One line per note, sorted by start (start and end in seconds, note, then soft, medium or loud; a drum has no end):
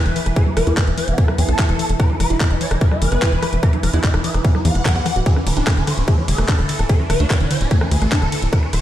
0.00 8.81 E3 medium
0.00 0.28 B4 loud
0.06 0.12 E1 medium
0.06 0.15 E3 medium
0.06 cross-stick soft
0.06 closed hi-hat soft
0.16 0.20 E3 medium
0.16 open hi-hat medium
0.26 0.32 E1 medium
0.26 cross-stick soft
0.26 closed hi-hat medium
0.36 0.42 E3 medium
0.36 0.42 A4 loud
0.36 kick loud
0.36 closed hi-hat medium
0.47 0.50 F#3 medium
0.47 0.52 B3 medium
0.57 0.63 E1 loud
0.57 0.66 E3 medium
0.57 0.62 B4 loud
0.57 cross-stick medium
0.57 open hi-hat loud
0.67 0.73 E2 medium
0.67 0.73 B3 medium
0.67 0.76 E4 loud
0.67 closed hi-hat medium
0.77 0.83 E3 medium
0.77 0.83 B3 medium
0.77 kick loud
0.77 cross-stick soft
0.77 clap loud
0.77 closed hi-hat medium
0.87 0.93 E1 medium
0.87 0.93 E3 medium
0.87 0.93 B3 medium
0.87 closed hi-hat soft
0.98 1.07 E3 medium
0.98 1.03 C5 medium
0.98 open hi-hat loud
1.08 1.14 E1 medium
1.08 1.13 B3 medium
1.08 closed hi-hat medium
1.18 1.24 B3 medium
1.18 1.24 A4 medium
1.18 kick loud
1.18 closed hi-hat medium
1.28 1.32 F#3 medium
1.28 1.34 B3 medium
1.28 cross-stick medium
1.38 1.44 E2 loud
1.38 1.47 E3 medium
1.38 1.91 A4 loud
1.38 open hi-hat loud
1.49 1.54 B1 medium
1.49 1.52 B3 medium
1.49 cross-stick soft
1.49 closed hi-hat medium
1.59 1.65 E4 loud
1.59 kick loud
1.59 clap loud
1.59 closed hi-hat medium
1.69 1.75 E1 medium
1.69 1.78 E3 medium
1.69 cross-stick soft
1.69 closed hi-hat soft
1.79 1.83 E3 medium
1.79 open hi-hat loud
1.89 1.95 E1 medium
1.89 closed hi-hat medium
2.00 2.06 E3 medium
2.00 2.05 B4 loud
2.00 kick loud
2.00 cross-stick medium
2.00 closed hi-hat medium
2.10 2.13 F#3 medium
2.10 2.15 E4 medium
2.20 2.26 E1 loud
2.20 2.29 E3 medium
2.20 2.26 B4 medium
2.20 cross-stick soft
2.20 open hi-hat loud
2.30 2.36 E1 medium
2.30 2.36 E4 medium
2.30 2.39 E4 loud
2.30 closed hi-hat medium
2.40 2.46 E3 medium
2.40 2.46 E4 medium
2.40 kick loud
2.40 cross-stick soft
2.40 clap loud
2.40 closed hi-hat medium
2.51 2.56 E1 medium
2.51 2.57 E3 medium
2.51 2.56 E4 medium
2.51 closed hi-hat soft
2.61 2.70 E3 medium
2.61 2.66 D5 medium
2.61 open hi-hat loud
2.71 2.77 E1 medium
2.71 2.77 E4 medium
2.71 cross-stick medium
2.71 closed hi-hat medium
2.81 2.87 B3 medium
2.81 2.87 B4 medium
2.81 kick loud
2.81 closed hi-hat medium
2.91 2.95 F#3 medium
2.91 2.97 E4 medium
2.91 cross-stick soft
3.02 3.07 F#1 loud
3.02 3.11 E3 medium
3.02 3.55 B4 loud
3.02 open hi-hat loud
3.12 3.18 F#1 medium
3.12 3.15 B3 medium
3.12 cross-stick soft
3.12 closed hi-hat medium
3.22 3.28 E4 loud
3.22 kick loud
3.22 clap loud
3.22 closed hi-hat medium
3.32 3.38 E1 medium
3.32 3.41 E3 medium
3.32 closed hi-hat soft
3.43 3.46 E3 medium
3.43 cross-stick medium
3.43 open hi-hat loud
3.53 3.59 E1 medium
3.53 closed hi-hat medium
3.63 3.69 E3 medium
3.63 3.68 B4 loud
3.63 kick loud
3.63 cross-stick soft
3.63 closed hi-hat medium
3.73 3.77 F#3 medium
3.73 3.79 E4 medium
3.73 closed hi-hat soft
3.83 3.89 E1 loud
3.83 3.92 E3 medium
3.83 3.89 B4 medium
3.83 cross-stick soft
3.83 open hi-hat loud
3.93 3.99 E2 medium
3.93 3.99 E4 medium
3.93 4.02 E4 loud
3.93 closed hi-hat medium
4.04 4.10 E3 medium
4.04 4.09 E4 medium
4.04 kick loud
4.04 clap loud
4.04 closed hi-hat medium
4.14 4.20 E1 medium
4.14 4.20 E3 medium
4.14 4.19 E4 medium
4.14 cross-stick medium
4.14 closed hi-hat soft
4.24 4.33 E3 medium
4.24 4.30 E5 medium
4.24 open hi-hat loud
4.34 4.40 E1 medium
4.34 4.40 E4 medium
4.34 cross-stick soft
4.34 closed hi-hat soft
4.45 4.51 B3 medium
4.45 4.50 F#5 medium
4.45 kick loud
4.45 closed hi-hat medium
4.55 4.58 F#3 medium
4.55 4.60 E4 medium
4.55 cross-stick soft
4.65 4.71 E2 loud
4.65 4.74 E3 loud
4.65 5.18 F#5 loud
4.65 open hi-hat loud
4.75 4.81 E1 medium
4.75 4.81 E3 medium
4.75 closed hi-hat medium
4.85 4.89 F#3 loud
4.85 kick loud
4.85 cross-stick medium
4.85 clap loud
4.85 closed hi-hat medium
4.96 5.01 E2 medium
4.96 4.99 E3 medium
4.96 closed hi-hat soft
5.06 5.09 E3 loud
5.06 cross-stick soft
5.06 open hi-hat loud
5.16 5.22 D1 medium
5.16 5.20 F#4 medium
5.16 closed hi-hat soft
5.26 5.32 D3 medium
5.26 5.32 A4 loud
5.26 kick loud
5.26 closed hi-hat medium
5.26 ride medium
5.36 5.40 E3 medium
5.36 5.42 D4 medium
5.36 cross-stick soft
5.47 5.52 D1 loud
5.47 5.56 D3 medium
5.47 5.52 B4 medium
5.47 open hi-hat loud
5.47 ride medium
5.57 5.63 D1 medium
5.57 5.62 D4 medium
5.57 5.66 D4 loud
5.57 closed hi-hat medium
5.67 5.73 D3 medium
5.67 5.73 D4 medium
5.67 kick loud
5.67 cross-stick medium
5.67 clap loud
5.67 closed hi-hat medium
5.67 ride medium
5.77 5.83 D1 medium
5.77 5.83 D3 medium
5.77 5.83 D4 medium
5.77 closed hi-hat soft
5.87 5.91 D3 loud
5.87 5.93 C#5 medium
5.87 cross-stick soft
5.87 open hi-hat loud
5.87 ride medium
5.98 6.03 D1 medium
5.98 6.03 D4 medium
5.98 closed hi-hat medium
6.08 6.14 A3 medium
6.08 6.13 A4 medium
6.08 kick loud
6.08 cross-stick soft
6.08 closed hi-hat medium
6.08 ride medium
6.18 6.22 E3 medium
6.18 6.24 D4 medium
6.28 6.34 E1 loud
6.28 6.37 D3 medium
6.28 6.81 A4 loud
6.28 open hi-hat loud
6.28 ride medium
6.38 6.44 E1 medium
6.38 6.42 A3 medium
6.38 cross-stick medium
6.38 closed hi-hat medium
6.49 6.55 D4 loud
6.49 kick loud
6.49 clap loud
6.49 closed hi-hat medium
6.49 ride medium
6.59 6.65 D1 medium
6.59 6.68 D3 medium
6.59 cross-stick soft
6.59 closed hi-hat soft
6.69 6.73 D3 medium
6.69 open hi-hat medium
6.69 ride medium
6.79 6.85 D1 medium
6.79 cross-stick soft
6.79 closed hi-hat soft
6.89 6.95 D3 medium
6.89 6.95 A4 loud
6.89 kick loud
6.89 closed hi-hat medium
6.89 ride medium
7.00 7.03 E3 medium
7.00 7.05 D4 medium
7.10 7.16 D1 medium
7.10 7.19 D3 medium
7.10 7.15 B4 loud
7.10 cross-stick medium
7.10 open hi-hat loud
7.10 ride medium
7.20 7.26 D2 medium
7.20 7.26 D4 medium
7.20 7.29 D4 loud
7.20 closed hi-hat medium
7.30 7.36 D3 medium
7.30 7.36 D4 medium
7.30 kick loud
7.30 cross-stick soft
7.30 clap loud
7.30 closed hi-hat medium
7.30 ride medium
7.40 7.46 D1 medium
7.40 7.46 D3 medium
7.40 7.46 D4 medium
7.40 closed hi-hat soft
7.51 7.54 D3 loud
7.51 7.56 C#5 medium
7.51 open hi-hat medium
7.51 ride medium
7.61 7.67 D1 medium
7.61 7.66 D4 medium
7.61 closed hi-hat medium
7.71 7.77 A3 medium
7.71 7.77 A4 medium
7.71 kick loud
7.71 closed hi-hat medium
7.71 ride medium
7.81 7.85 E3 medium
7.81 7.87 D4 medium
7.81 cross-stick medium
7.91 7.97 D2 loud
7.91 8.00 D3 medium
7.91 8.45 A4 loud
7.91 open hi-hat loud
7.91 ride medium
8.02 8.07 A1 medium
8.02 8.05 A3 medium
8.02 cross-stick soft
8.02 closed hi-hat medium
8.12 8.18 D4 loud
8.12 kick loud
8.12 clap loud
8.12 closed hi-hat medium
8.12 ride medium
8.22 8.28 D1 medium
8.22 8.31 D3 medium
8.22 cross-stick soft
8.22 closed hi-hat soft
8.32 8.36 D3 medium
8.32 open hi-hat medium
8.32 ride medium
8.42 8.48 D1 medium
8.42 closed hi-hat medium
8.53 8.59 D3 medium
8.53 8.58 B4 loud
8.53 kick loud
8.53 cross-stick medium
8.53 closed hi-hat medium
8.53 ride medium
8.63 8.66 E3 medium
8.63 8.69 D4 medium
8.73 8.79 D1 loud
8.73 8.81 D3 medium
8.73 8.79 C#5 loud
8.73 cross-stick soft
8.73 open hi-hat loud
8.73 ride medium